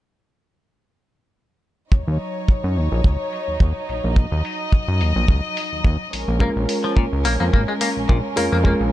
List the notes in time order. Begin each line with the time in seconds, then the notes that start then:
1.92 D#2 F#3 D#4 C#5, kick
2.08 D#2
2.21 open hi-hat
2.48 kick
2.64 F#2
2.77 D#2, open hi-hat
2.92 A#1
3.04 C#2, kick
3.33 open hi-hat
3.48 D#2
3.60 D#2, kick
3.89 A#1, open hi-hat
4.04 A#1
4.16 D#5, kick
4.32 D#2
4.45 open hi-hat
4.72 kick
4.88 F#2
5.01 D#2, open hi-hat
5.16 A#1
5.28 C#2, kick
5.57 open hi-hat
5.72 D#2
5.85 D#2, kick
6.13 A#1 G#3 C#4 A#4, open hi-hat
6.28 A#1
6.39 G#3 A#3 C#4 F4 A#4, kick
6.56 A#1
6.69 open hi-hat
6.84 F3
6.97 A#2, kick
7.13 C#2
7.25 A#1 A#3, open hi-hat
7.40 F2 A#3
7.53 G#1 A#3, kick
7.68 G#3
7.81 A#3, open hi-hat
7.97 A#1
8.09 A#1 A#2, kick
8.36 F2 G#3 A#3 C#4 F4 A#4, open hi-hat
8.52 F2 A#3
8.64 G#3 A#3 C#4 F4 A#4, kick
8.80 A#1